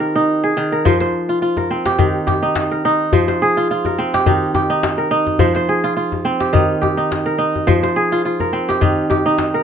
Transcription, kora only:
Already playing: D#3 C4 F4 G4
0.00 A#4
0.16 D#4
0.44 G#4
0.57 D#3
0.72 A#4
0.85 F3 C5
1.01 C5
1.29 F4
1.42 F4
1.57 A#4
1.71 C4
1.86 G4
1.99 D#3 D#4
2.27 G4
2.43 D#4
2.71 A#4
2.85 D#4
3.13 F3 C5
3.28 C5
3.42 G#4
3.57 F4
3.71 F4
3.86 A#4
3.99 C4
4.14 G4
4.26 D#3 D#4
4.55 G4
4.70 D#4
4.98 A#4
5.11 D#4
5.39 F3 C5
5.56 C5
5.69 G#4
5.84 F4
5.97 F4
6.25 C4
6.40 G4
6.53 D#3 D#4
6.81 G4
6.97 D#4
7.26 A#4
7.38 D#4
7.67 F3 C5
7.83 C5
7.96 G#4
8.12 F4
8.25 F4
8.40 A#4
8.53 C4
8.69 G4
8.81 D#3 D#4
9.10 G4
9.26 D#4
9.54 A#4

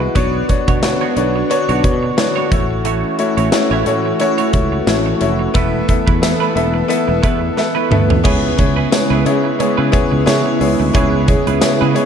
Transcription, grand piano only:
Already playing: G#3 E4 F#4 B4
0.15 B3 D4 F#4 C#5
0.49 B3 D4 F#4 C#5
0.83 B3 D4 F#4 C#5
1.16 B3 D4 F#4 C#5
1.50 B3 D4 F#4 C#5
1.84 B3 D4 F#4 C#5
2.17 B3 D4 F#4 C#5
2.51 A3 E4 F#4 C#5
3.19 A3 E4 F#4 C#5
3.52 A3 E4 F#4 C#5
3.86 A3 E4 F#4 C#5
4.20 A3 E4 F#4 C#5
4.53 A3 E4 F#4 C#5
4.87 A3 E4 F#4 C#5
5.20 A3 E4 F#4 C#5
5.54 B3 E4 A4 E5
5.88 B3 E4 A4 E5
6.22 B3 E4 A4 E5
6.55 B3 E4 A4 E5
6.88 B3 E4 A4 E5
7.22 B3 E4 A4 E5
7.57 B3 E4 A4 E5
7.91 B3 E4 A4 E5
8.24 B3 E4 G#4 C#5
8.58 B3 E4 G#4 C#5
8.91 B3 E4 G#4 C#5
9.26 B3 E4 G#4 C#5
9.59 B3 E4 G#4 C#5
9.92 B3 E4 G#4 C#5
10.26 B3 E4 G#4 C#5
10.60 B3 E4 G#4 C#5
10.94 B3 E4 G#4 C#5
11.27 B3 E4 G#4 C#5
11.61 B3 E4 G#4 C#5
11.94 B3 E4 G#4 C#5

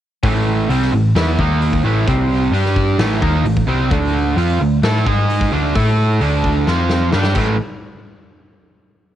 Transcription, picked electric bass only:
0.24 A1
0.69 C2
0.92 A1
1.15 E2
1.39 D#2
1.84 A1
2.07 C2
2.52 G2
2.98 A1
3.22 D#2
3.43 A1
3.67 C2
3.91 D2
4.36 F2
4.61 D2
4.82 A2
5.07 G#2
5.52 D2
5.75 A2
6.20 D2
6.67 F2
7.14 G2
7.36 A1

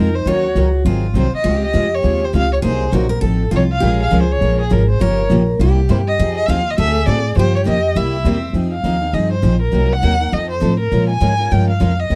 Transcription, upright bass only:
Already playing: F2
0.26 D#2
0.55 C#2
0.85 G#1
1.14 C2
1.32 muted upright bass stroke
1.45 C#2
1.74 F2
2.04 D#2
2.34 C#2
2.64 C2
2.92 A#1
3.22 A1
3.52 C2
3.83 A#1
4.12 C#2
4.41 A#1
4.71 G#1
5.01 G1
5.30 A#1
5.59 C2
5.89 G2
6.19 F2
6.48 D#2
6.78 D2
7.07 A2
7.37 G2
7.67 F2
7.96 C2
8.25 E2
8.53 F2
8.84 D#2
9.13 G2
9.43 A#1
9.73 C2
10.03 D#2
10.33 F2
10.62 A2
10.92 A#2
11.21 G#2
11.52 G2
11.81 F2
12.10 D#2

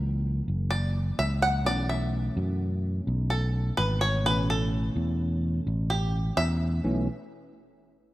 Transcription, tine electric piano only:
Already playing: C#3 E3 F#3 A#3
1.65 B2 E3 A3 C#4
4.25 B2 E3 A3 C#4
6.84 B2 E3 A3 C#4

